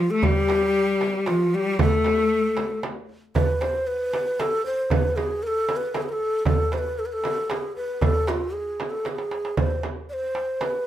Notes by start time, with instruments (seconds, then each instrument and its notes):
Already playing: cello F3, ney F4
0.11 cello A3, ney A4
0.23 cello G3, ney G4, darbuka dum, frame drum
0.49 darbuka tek, frame drum
1.01 darbuka tek, frame drum
1.26 cello F3, ney F4, darbuka tek, frame drum
1.54 cello G3, ney G4
1.79 cello A3, ney A4, darbuka dum, frame drum
2.04 darbuka tek, frame drum
2.57 darbuka tek, frame drum
2.83 darbuka tek, frame drum
3.09 darbuka ka
3.35 ney B4, darbuka dum, frame drum
3.61 ney C5, darbuka tek, frame drum
3.87 ney B4
4.13 darbuka tek, frame drum
4.40 ney A4, darbuka tek, frame drum
4.65 ney C5, darbuka ka
4.90 ney B4, darbuka dum, frame drum
5.16 ney G#4, frame drum
5.43 ney A#4
5.47 ney A4
5.69 darbuka tek, frame drum
5.76 ney B4
5.94 ney A4, darbuka tek, frame drum
6.02 ney G#4
6.09 ney A4 A#4
6.20 darbuka ka
6.45 ney A4, darbuka dum, frame drum
6.72 ney C5, darbuka tek, frame drum
6.78 ney B4
6.99 ney A4
7.06 ney B4
7.13 ney A4
7.24 darbuka tek, frame drum
7.50 ney G#4, darbuka tek, frame drum
7.76 ney B4, darbuka ka
8.01 ney A4, darbuka dum, frame drum
8.27 ney F4, darbuka tek, frame drum
8.53 ney G#4, darbuka ka
8.80 darbuka tek, frame drum
8.90 ney A4
9.05 ney G#4, darbuka tek, frame drum
9.18 darbuka ka
9.31 darbuka tek
9.45 darbuka ka
9.57 ney C5, darbuka dum, frame drum
9.83 darbuka tek, frame drum
10.09 ney C5 D5
10.35 darbuka tek
10.61 ney B4, darbuka tek, frame drum